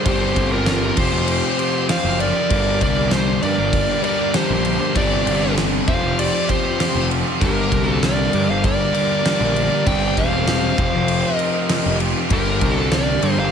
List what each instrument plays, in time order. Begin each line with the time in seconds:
0.05 picked electric bass G1, overdriven electric guitar G2 D3 G3 C4 D4 G4, distorted electric guitar C3, string machine D4 G4 C5, lead electric guitar G4 C5, kick, crash
0.19 overdriven electric guitar G3 C4 D4 G4
0.35 picked electric bass G1, overdriven electric guitar G3 C4 D4 G4, kick, crash
0.51 overdriven electric guitar G3 C4 D4 G4, lead electric guitar F4 A#4
0.65 overdriven electric guitar G2 D3 G3 C4 D4 G4, snare, crash
0.96 picked electric bass F1, distorted electric guitar F2 C3, overdriven electric guitar F3 C4 F4 G4, string machine F4 G4 C5, lead electric guitar C5, kick, crash
1.00 lead electric guitar G4
1.12 picked electric bass F1, overdriven electric guitar C4 F4 G4
1.28 crash
1.57 overdriven electric guitar F3 C4 F4 G4, crash
1.73 overdriven electric guitar C4 F4 G4
1.87 distorted electric guitar F2 C3, overdriven electric guitar F3 C4 F4 G4, lead electric guitar C5 F5, snare, crash
2.04 picked electric bass F#1
2.18 overdriven electric guitar F3 C4 F4 G4, lead electric guitar A#4 D5, crash
2.33 overdriven electric guitar C4 F4 G4
2.49 picked electric bass G1, overdriven electric guitar G2 D3 G3 A#3 D4, string machine D4 G4 A#4, kick, crash
2.53 overdriven electric guitar G4
2.65 overdriven electric guitar G3 A#3 D4 G4
2.81 picked electric bass C2, overdriven electric guitar G3 A#3 D4 G4, lead electric guitar A#4 D5, kick, crash
2.96 overdriven electric guitar G3 A#3 D4 G4
3.10 overdriven electric guitar G2 D3 G3 A#3 D4 G4, lead electric guitar C5, snare, crash
3.15 lead electric guitar G4
3.40 picked electric bass G2, distorted electric guitar G2 D3, overdriven electric guitar G3 A#3 D4 G4, lead electric guitar D5, crash
3.45 lead electric guitar A#4
3.56 picked electric bass G1, overdriven electric guitar G3 A#3 D4 G4
3.73 kick, crash
4.01 overdriven electric guitar G2 D3 G3 A#3 D4 G4, lead electric guitar A#4 D5, crash
4.17 overdriven electric guitar G3 A#3 D4 G4
4.32 overdriven electric guitar G2 D3 G3 A#3 D4 G4, lead electric guitar G4, snare, crash
4.36 lead electric guitar C5
4.50 picked electric bass A#1
4.63 overdriven electric guitar G3 A#3 D4 G4, crash
4.79 overdriven electric guitar G3 A#3 D4 G4
4.95 picked electric bass G1, overdriven electric guitar G2 D3 G3 C4 D4 G4, distorted electric guitar C3, string machine D4 G4 C5, lead electric guitar G4 D5, kick, crash
5.10 overdriven electric guitar G3 C4 D4 G4
5.26 picked electric bass G1, overdriven electric guitar G3 C4 D4 G4, crash
5.40 overdriven electric guitar G3 C4 D4 G4
5.56 overdriven electric guitar G2 D3 G3 C4 D4 G4, snare, crash
5.86 picked electric bass F1, distorted electric guitar F2 C3, overdriven electric guitar F3 C4 F4 G4, string machine F4 G4 C5, lead electric guitar C5 F5, kick, crash
6.01 picked electric bass F1, overdriven electric guitar C4 F4 G4
6.19 lead electric guitar G4 D5, crash
6.47 overdriven electric guitar F3 C4 F4 G4, lead electric guitar G4 C5, kick, crash
6.63 overdriven electric guitar C4 F4 G4
6.78 distorted electric guitar F2 C3, overdriven electric guitar F3 C4 F4 G4, snare, crash
6.95 picked electric bass F1
7.09 overdriven electric guitar F3 C4 F4 G4, crash
7.24 overdriven electric guitar C4 F4 G4
7.40 picked electric bass G1, overdriven electric guitar G2 D3 G3 A#3 D4 G4, string machine D4 G4 A#4, lead electric guitar G4, kick, crash
7.45 lead electric guitar A#4
7.55 overdriven electric guitar G3 A#3 D4 G4
7.70 picked electric bass C2, overdriven electric guitar G3 A#3 D4 G4, kick, crash
7.83 overdriven electric guitar D4 G4, lead electric guitar F#4
7.87 overdriven electric guitar G3 A#3, lead electric guitar A4
8.01 overdriven electric guitar G2 D3 G3 A#3 D4 G4, lead electric guitar A#4 D5, snare, crash
8.32 picked electric bass G2, distorted electric guitar G2 D3, overdriven electric guitar G3 A#3 D4 G4, crash
8.47 picked electric bass G1, overdriven electric guitar G3 A#3 D4 G4, lead electric guitar C5 F5
8.64 lead electric guitar A#4 D5, kick, crash
8.94 overdriven electric guitar G2 D3 G3 A#3 D4 G4, crash
9.10 overdriven electric guitar G3 A#3 D4 G4
9.24 overdriven electric guitar G2 D3 G3 A#3 D4 G4, snare, crash
9.41 picked electric bass A#1
9.56 overdriven electric guitar G3 A#3 D4 G4, crash
9.71 overdriven electric guitar G3 A#3 D4 G4
9.85 picked electric bass G1, overdriven electric guitar G2 D3 G3 C4 D4 G4, distorted electric guitar C3, string machine D4 G4 C5, lead electric guitar D5 G5, kick, crash
10.02 overdriven electric guitar G3 C4 D4 G4
10.16 picked electric bass E1, overdriven electric guitar G3 C4 D4 G4, lead electric guitar C5 F5, kick, crash
10.32 overdriven electric guitar G3 C4 D4 G4
10.47 overdriven electric guitar G2 D3 G3 C4 D4 G4, snare, crash
10.77 picked electric bass F1, distorted electric guitar F2 C3, overdriven electric guitar F3 C4 F4 G4, string machine F4 G4 C5, kick, crash
10.93 picked electric bass F1, overdriven electric guitar C4 F4 G4
11.08 crash
11.36 overdriven electric guitar F3, lead electric guitar A#4 D#5, crash
11.40 overdriven electric guitar C4 F4 G4
11.54 overdriven electric guitar C4 F4 G4
11.69 distorted electric guitar F2 C3, overdriven electric guitar F3 C4 F4 G4, snare, crash
11.86 picked electric bass F1
12.00 overdriven electric guitar F3 C4 F4 G4, crash
12.16 overdriven electric guitar C4 F4 G4
12.30 picked electric bass G1, overdriven electric guitar G2 D3 G3 A#3 D4 G4, string machine D4 G4 A#4, lead electric guitar G4 A#4, kick, crash
12.46 overdriven electric guitar G3 A#3 D4 G4
12.60 picked electric bass C2, overdriven electric guitar G3 A#3 D4 G4, kick, crash
12.73 lead electric guitar F#4 A4, overdriven electric guitar G4
12.77 overdriven electric guitar G3 A#3 D4
12.92 overdriven electric guitar G2 D3 G3 A#3 D4 G4, lead electric guitar A#4 D5, snare, crash
13.22 picked electric bass G2, distorted electric guitar G2 D3, overdriven electric guitar G3 A#3 D4 G4, crash
13.38 picked electric bass G1, overdriven electric guitar G3 A#3 D4 G4, lead electric guitar C5 F5